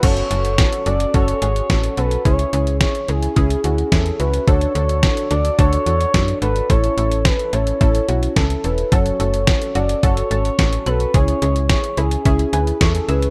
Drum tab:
CC |x---------------|----------------|----------------|----------------|
HH |xxxxxxxxxxxxxxxx|xxxxxxxxxxxxxxxx|xxxxxxxxxxxxxxxx|xxxxxxxxxxxxxxxx|
SD |----o-------o---|----o-------o---|----o-------o---|----o-------o---|
BD |o---o---o---o---|o---o---o---o---|o---o---o---o---|o---o---o---o---|

CC |----------------|----------------|
HH |xxxxxxxxxxxxxxxx|xxxxxxxxxxxxxxxx|
SD |----o-------o---|----o-------o---|
BD |o---o---o---o---|o---o---o---o---|